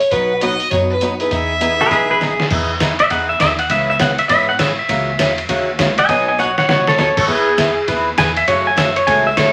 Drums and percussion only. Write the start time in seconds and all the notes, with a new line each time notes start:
0.01 open hi-hat
0.11 kick, open hi-hat
0.41 closed hi-hat
0.60 open hi-hat
0.71 kick, open hi-hat
1.01 closed hi-hat
1.20 open hi-hat
1.31 kick, open hi-hat
1.61 closed hi-hat
1.91 kick, open hi-hat
2.21 snare
2.40 snare
2.50 kick, crash
2.80 kick, snare, hi-hat pedal, ride
2.99 ride
3.10 kick, ride
3.40 kick, snare, hi-hat pedal, ride
3.59 ride
3.70 kick, ride
3.99 kick, snare, hi-hat pedal, ride
4.18 ride
4.29 kick, ride
4.59 kick, snare, hi-hat pedal, ride
4.89 kick, ride
5.19 kick, snare, hi-hat pedal, ride
5.38 ride
5.49 kick, ride
5.79 kick, snare, hi-hat pedal, ride
5.98 ride
6.09 kick, ride
6.39 hi-hat pedal
6.58 snare
6.69 snare
6.87 snare
6.99 snare, hi-hat pedal
7.17 kick, crash
7.28 kick
7.58 kick, snare, hi-hat pedal, ride
7.88 kick, ride
8.18 kick, snare, hi-hat pedal, ride
8.37 ride
8.48 kick, ride
8.77 kick, snare, hi-hat pedal, ride
8.96 ride
9.07 kick, ride
9.37 kick, snare, hi-hat pedal, ride